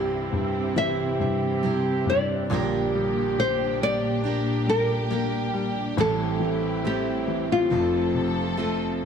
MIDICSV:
0, 0, Header, 1, 6, 480
1, 0, Start_track
1, 0, Tempo, 869565
1, 1382, Time_signature, 4, 2, 24, 8
1, 4996, End_track
2, 0, Start_track
2, 0, Title_t, "Nylon-string guitar"
2, 0, Program_c, 0, 24
2, 0, Note_on_c, 0, 76, 94
2, 422, Note_off_c, 0, 76, 0
2, 429, Note_on_c, 0, 76, 102
2, 1123, Note_off_c, 0, 76, 0
2, 1157, Note_on_c, 0, 74, 85
2, 1608, Note_off_c, 0, 74, 0
2, 1875, Note_on_c, 0, 72, 102
2, 2113, Note_off_c, 0, 72, 0
2, 2116, Note_on_c, 0, 74, 108
2, 2590, Note_off_c, 0, 74, 0
2, 2592, Note_on_c, 0, 70, 91
2, 3285, Note_off_c, 0, 70, 0
2, 3315, Note_on_c, 0, 69, 92
2, 3788, Note_off_c, 0, 69, 0
2, 3791, Note_on_c, 0, 67, 88
2, 4150, Note_off_c, 0, 67, 0
2, 4152, Note_on_c, 0, 65, 77
2, 4845, Note_off_c, 0, 65, 0
2, 4996, End_track
3, 0, Start_track
3, 0, Title_t, "French horn section"
3, 0, Program_c, 1, 60
3, 0, Note_on_c, 1, 67, 95
3, 165, Note_off_c, 1, 67, 0
3, 186, Note_on_c, 1, 67, 98
3, 407, Note_off_c, 1, 67, 0
3, 426, Note_on_c, 1, 67, 113
3, 1362, Note_off_c, 1, 67, 0
3, 1390, Note_on_c, 1, 67, 117
3, 2655, Note_off_c, 1, 67, 0
3, 2827, Note_on_c, 1, 62, 84
3, 3283, Note_off_c, 1, 62, 0
3, 3301, Note_on_c, 1, 64, 104
3, 4262, Note_off_c, 1, 64, 0
3, 4269, Note_on_c, 1, 60, 81
3, 4985, Note_off_c, 1, 60, 0
3, 4996, End_track
4, 0, Start_track
4, 0, Title_t, "Steel-string acoustic guitar"
4, 0, Program_c, 2, 25
4, 0, Note_on_c, 2, 55, 56
4, 0, Note_on_c, 2, 60, 57
4, 0, Note_on_c, 2, 64, 58
4, 0, Note_on_c, 2, 72, 54
4, 418, Note_off_c, 2, 55, 0
4, 418, Note_off_c, 2, 60, 0
4, 420, Note_on_c, 2, 55, 53
4, 423, Note_off_c, 2, 64, 0
4, 424, Note_on_c, 2, 60, 64
4, 425, Note_off_c, 2, 72, 0
4, 430, Note_on_c, 2, 64, 63
4, 431, Note_on_c, 2, 72, 61
4, 897, Note_off_c, 2, 55, 0
4, 898, Note_off_c, 2, 60, 0
4, 899, Note_on_c, 2, 55, 66
4, 903, Note_off_c, 2, 64, 0
4, 905, Note_on_c, 2, 60, 57
4, 907, Note_off_c, 2, 72, 0
4, 910, Note_on_c, 2, 64, 67
4, 914, Note_on_c, 2, 72, 64
4, 1378, Note_on_c, 2, 46, 81
4, 1384, Note_off_c, 2, 60, 0
4, 1384, Note_on_c, 2, 50, 89
4, 1386, Note_off_c, 2, 64, 0
4, 1387, Note_off_c, 2, 55, 0
4, 1388, Note_off_c, 2, 72, 0
4, 1389, Note_on_c, 2, 55, 73
4, 1392, Note_on_c, 2, 62, 86
4, 1396, Note_on_c, 2, 67, 80
4, 1400, Note_on_c, 2, 70, 93
4, 2337, Note_off_c, 2, 55, 0
4, 2339, Note_off_c, 2, 62, 0
4, 2339, Note_on_c, 2, 55, 55
4, 2340, Note_off_c, 2, 46, 0
4, 2343, Note_off_c, 2, 50, 0
4, 2346, Note_on_c, 2, 62, 58
4, 2348, Note_off_c, 2, 70, 0
4, 2349, Note_off_c, 2, 67, 0
4, 2351, Note_on_c, 2, 67, 61
4, 2355, Note_on_c, 2, 70, 60
4, 2813, Note_off_c, 2, 62, 0
4, 2815, Note_off_c, 2, 55, 0
4, 2817, Note_on_c, 2, 55, 61
4, 2820, Note_on_c, 2, 62, 65
4, 2822, Note_off_c, 2, 70, 0
4, 2823, Note_off_c, 2, 67, 0
4, 2825, Note_on_c, 2, 67, 60
4, 2828, Note_on_c, 2, 70, 67
4, 3295, Note_off_c, 2, 55, 0
4, 3300, Note_on_c, 2, 45, 84
4, 3301, Note_off_c, 2, 62, 0
4, 3302, Note_on_c, 2, 52, 81
4, 3302, Note_on_c, 2, 55, 82
4, 3303, Note_off_c, 2, 67, 0
4, 3305, Note_off_c, 2, 70, 0
4, 3305, Note_on_c, 2, 60, 94
4, 3305, Note_on_c, 2, 64, 84
4, 3308, Note_on_c, 2, 69, 82
4, 3772, Note_off_c, 2, 55, 0
4, 3779, Note_on_c, 2, 55, 60
4, 3780, Note_off_c, 2, 60, 0
4, 3780, Note_off_c, 2, 64, 0
4, 3781, Note_off_c, 2, 45, 0
4, 3782, Note_off_c, 2, 52, 0
4, 3782, Note_on_c, 2, 60, 63
4, 3787, Note_on_c, 2, 64, 55
4, 3788, Note_off_c, 2, 69, 0
4, 3790, Note_on_c, 2, 69, 58
4, 4249, Note_off_c, 2, 55, 0
4, 4252, Note_on_c, 2, 57, 53
4, 4256, Note_off_c, 2, 60, 0
4, 4259, Note_on_c, 2, 60, 56
4, 4260, Note_off_c, 2, 64, 0
4, 4262, Note_on_c, 2, 65, 56
4, 4263, Note_off_c, 2, 69, 0
4, 4265, Note_on_c, 2, 69, 56
4, 4730, Note_off_c, 2, 57, 0
4, 4732, Note_on_c, 2, 57, 71
4, 4735, Note_off_c, 2, 60, 0
4, 4737, Note_on_c, 2, 60, 64
4, 4740, Note_off_c, 2, 65, 0
4, 4742, Note_on_c, 2, 65, 72
4, 4745, Note_off_c, 2, 69, 0
4, 4747, Note_on_c, 2, 69, 64
4, 4996, Note_off_c, 2, 57, 0
4, 4996, Note_off_c, 2, 60, 0
4, 4996, Note_off_c, 2, 65, 0
4, 4996, Note_off_c, 2, 69, 0
4, 4996, End_track
5, 0, Start_track
5, 0, Title_t, "String section"
5, 0, Program_c, 3, 48
5, 0, Note_on_c, 3, 48, 71
5, 0, Note_on_c, 3, 60, 70
5, 0, Note_on_c, 3, 64, 65
5, 0, Note_on_c, 3, 67, 64
5, 1360, Note_off_c, 3, 67, 0
5, 1366, Note_off_c, 3, 48, 0
5, 1368, Note_off_c, 3, 60, 0
5, 1368, Note_off_c, 3, 64, 0
5, 1381, Note_on_c, 3, 62, 70
5, 1383, Note_on_c, 3, 46, 83
5, 1384, Note_on_c, 3, 67, 80
5, 1386, Note_on_c, 3, 58, 74
5, 3282, Note_off_c, 3, 62, 0
5, 3284, Note_off_c, 3, 46, 0
5, 3285, Note_off_c, 3, 58, 0
5, 3294, Note_on_c, 3, 57, 66
5, 3295, Note_on_c, 3, 45, 73
5, 3297, Note_on_c, 3, 60, 68
5, 4241, Note_off_c, 3, 67, 0
5, 4249, Note_off_c, 3, 45, 0
5, 4249, Note_off_c, 3, 57, 0
5, 4253, Note_on_c, 3, 41, 70
5, 4255, Note_on_c, 3, 69, 76
5, 4258, Note_on_c, 3, 53, 58
5, 4996, Note_off_c, 3, 41, 0
5, 4996, Note_off_c, 3, 53, 0
5, 4996, Note_off_c, 3, 60, 0
5, 4996, Note_off_c, 3, 69, 0
5, 4996, End_track
6, 0, Start_track
6, 0, Title_t, "Grand piano"
6, 0, Program_c, 4, 0
6, 0, Control_c, 4, 64, 127
6, 0, Note_on_c, 4, 36, 70
6, 0, Note_on_c, 4, 43, 51
6, 0, Note_on_c, 4, 55, 65
6, 171, Note_off_c, 4, 43, 0
6, 179, Note_on_c, 4, 43, 53
6, 421, Note_on_c, 4, 52, 59
6, 651, Note_off_c, 4, 43, 0
6, 659, Note_on_c, 4, 43, 52
6, 881, Note_off_c, 4, 55, 0
6, 902, Note_on_c, 4, 48, 61
6, 1129, Note_off_c, 4, 43, 0
6, 1138, Note_on_c, 4, 43, 59
6, 1356, Note_off_c, 4, 36, 0
6, 1359, Note_off_c, 4, 52, 0
6, 1368, Note_off_c, 4, 48, 0
6, 1373, Note_off_c, 4, 43, 0
6, 1380, Note_on_c, 4, 46, 69
6, 1384, Note_on_c, 4, 34, 65
6, 1390, Control_c, 4, 64, 0
6, 1481, Control_c, 4, 64, 127
6, 1629, Note_on_c, 4, 55, 57
6, 1866, Note_on_c, 4, 67, 65
6, 2099, Note_off_c, 4, 55, 0
6, 2107, Note_on_c, 4, 55, 49
6, 2339, Note_on_c, 4, 62, 59
6, 2567, Note_off_c, 4, 55, 0
6, 2575, Note_on_c, 4, 55, 52
6, 2802, Note_off_c, 4, 67, 0
6, 2819, Note_on_c, 4, 58, 58
6, 3048, Note_off_c, 4, 55, 0
6, 3057, Note_on_c, 4, 55, 57
6, 3278, Note_off_c, 4, 62, 0
6, 3279, Note_off_c, 4, 46, 0
6, 3281, Note_off_c, 4, 34, 0
6, 3286, Note_off_c, 4, 58, 0
6, 3292, Note_off_c, 4, 55, 0
6, 3296, Note_on_c, 4, 45, 67
6, 3298, Note_on_c, 4, 33, 63
6, 3309, Control_c, 4, 64, 0
6, 3412, Control_c, 4, 64, 127
6, 3534, Note_on_c, 4, 52, 56
6, 3775, Note_on_c, 4, 60, 65
6, 4009, Note_off_c, 4, 52, 0
6, 4017, Note_on_c, 4, 52, 47
6, 4237, Note_off_c, 4, 45, 0
6, 4238, Note_off_c, 4, 33, 0
6, 4244, Note_off_c, 4, 60, 0
6, 4252, Note_off_c, 4, 52, 0
6, 4257, Note_on_c, 4, 29, 59
6, 4259, Note_on_c, 4, 41, 68
6, 4268, Control_c, 4, 64, 0
6, 4380, Control_c, 4, 64, 127
6, 4492, Note_on_c, 4, 48, 52
6, 4736, Note_on_c, 4, 57, 67
6, 4976, Note_off_c, 4, 48, 0
6, 4996, Note_off_c, 4, 29, 0
6, 4996, Note_off_c, 4, 41, 0
6, 4996, Note_off_c, 4, 57, 0
6, 4996, End_track
0, 0, End_of_file